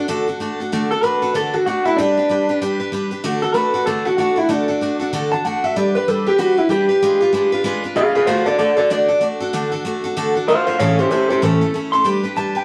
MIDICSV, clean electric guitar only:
0, 0, Header, 1, 2, 480
1, 0, Start_track
1, 0, Key_signature, 2, "major"
1, 0, Tempo, 315126
1, 1091, Time_signature, 4, 2, 24, 8
1, 19261, End_track
2, 0, Start_track
2, 0, Title_t, "Clean electric guitar"
2, 0, Program_c, 0, 27
2, 1383, Note_on_c, 0, 69, 93
2, 1580, Note_off_c, 0, 69, 0
2, 1580, Note_on_c, 0, 71, 88
2, 2042, Note_off_c, 0, 71, 0
2, 2066, Note_on_c, 0, 69, 91
2, 2348, Note_off_c, 0, 69, 0
2, 2348, Note_on_c, 0, 66, 82
2, 2514, Note_off_c, 0, 66, 0
2, 2532, Note_on_c, 0, 66, 92
2, 2814, Note_off_c, 0, 66, 0
2, 2827, Note_on_c, 0, 64, 82
2, 2994, Note_on_c, 0, 62, 99
2, 3010, Note_off_c, 0, 64, 0
2, 3936, Note_off_c, 0, 62, 0
2, 5212, Note_on_c, 0, 69, 87
2, 5406, Note_off_c, 0, 69, 0
2, 5406, Note_on_c, 0, 71, 79
2, 5873, Note_off_c, 0, 71, 0
2, 5880, Note_on_c, 0, 69, 87
2, 6168, Note_off_c, 0, 69, 0
2, 6177, Note_on_c, 0, 66, 87
2, 6352, Note_off_c, 0, 66, 0
2, 6370, Note_on_c, 0, 66, 83
2, 6669, Note_off_c, 0, 66, 0
2, 6669, Note_on_c, 0, 64, 84
2, 6848, Note_off_c, 0, 64, 0
2, 6848, Note_on_c, 0, 62, 95
2, 7782, Note_off_c, 0, 62, 0
2, 8099, Note_on_c, 0, 81, 109
2, 8296, Note_off_c, 0, 81, 0
2, 8296, Note_on_c, 0, 78, 93
2, 8593, Note_off_c, 0, 78, 0
2, 8593, Note_on_c, 0, 76, 86
2, 8780, Note_off_c, 0, 76, 0
2, 8780, Note_on_c, 0, 74, 87
2, 9058, Note_off_c, 0, 74, 0
2, 9065, Note_on_c, 0, 71, 92
2, 9263, Note_off_c, 0, 71, 0
2, 9263, Note_on_c, 0, 69, 97
2, 9539, Note_off_c, 0, 69, 0
2, 9557, Note_on_c, 0, 67, 89
2, 9728, Note_off_c, 0, 67, 0
2, 9734, Note_on_c, 0, 66, 84
2, 10025, Note_off_c, 0, 66, 0
2, 10025, Note_on_c, 0, 64, 94
2, 10201, Note_off_c, 0, 64, 0
2, 10207, Note_on_c, 0, 67, 107
2, 11605, Note_off_c, 0, 67, 0
2, 12122, Note_on_c, 0, 68, 90
2, 12132, Note_on_c, 0, 77, 98
2, 12397, Note_off_c, 0, 68, 0
2, 12403, Note_off_c, 0, 77, 0
2, 12414, Note_on_c, 0, 68, 82
2, 12426, Note_on_c, 0, 77, 69
2, 12578, Note_off_c, 0, 77, 0
2, 12584, Note_on_c, 0, 72, 84
2, 12594, Note_off_c, 0, 68, 0
2, 12596, Note_on_c, 0, 77, 94
2, 12865, Note_off_c, 0, 72, 0
2, 12883, Note_off_c, 0, 77, 0
2, 12884, Note_on_c, 0, 69, 75
2, 12896, Note_on_c, 0, 74, 82
2, 13059, Note_off_c, 0, 74, 0
2, 13061, Note_off_c, 0, 69, 0
2, 13077, Note_on_c, 0, 69, 90
2, 13081, Note_on_c, 0, 74, 85
2, 13342, Note_off_c, 0, 69, 0
2, 13352, Note_off_c, 0, 74, 0
2, 13360, Note_on_c, 0, 69, 78
2, 13371, Note_on_c, 0, 74, 105
2, 13546, Note_off_c, 0, 69, 0
2, 13559, Note_off_c, 0, 74, 0
2, 13592, Note_on_c, 0, 74, 103
2, 14046, Note_off_c, 0, 74, 0
2, 15961, Note_on_c, 0, 72, 88
2, 15967, Note_on_c, 0, 77, 102
2, 16226, Note_off_c, 0, 72, 0
2, 16242, Note_off_c, 0, 77, 0
2, 16244, Note_on_c, 0, 72, 71
2, 16260, Note_on_c, 0, 77, 85
2, 16424, Note_off_c, 0, 77, 0
2, 16427, Note_off_c, 0, 72, 0
2, 16436, Note_on_c, 0, 73, 85
2, 16442, Note_on_c, 0, 77, 98
2, 16710, Note_off_c, 0, 73, 0
2, 16725, Note_off_c, 0, 77, 0
2, 16739, Note_on_c, 0, 67, 76
2, 16751, Note_on_c, 0, 72, 84
2, 16898, Note_off_c, 0, 67, 0
2, 16901, Note_off_c, 0, 72, 0
2, 16915, Note_on_c, 0, 67, 87
2, 16923, Note_on_c, 0, 72, 87
2, 17182, Note_off_c, 0, 67, 0
2, 17199, Note_off_c, 0, 72, 0
2, 17200, Note_on_c, 0, 67, 77
2, 17217, Note_on_c, 0, 72, 85
2, 17384, Note_off_c, 0, 67, 0
2, 17411, Note_off_c, 0, 72, 0
2, 17411, Note_on_c, 0, 69, 113
2, 17874, Note_off_c, 0, 69, 0
2, 18157, Note_on_c, 0, 84, 92
2, 18350, Note_off_c, 0, 84, 0
2, 18838, Note_on_c, 0, 81, 91
2, 19138, Note_off_c, 0, 81, 0
2, 19138, Note_on_c, 0, 79, 105
2, 19261, Note_off_c, 0, 79, 0
2, 19261, End_track
0, 0, End_of_file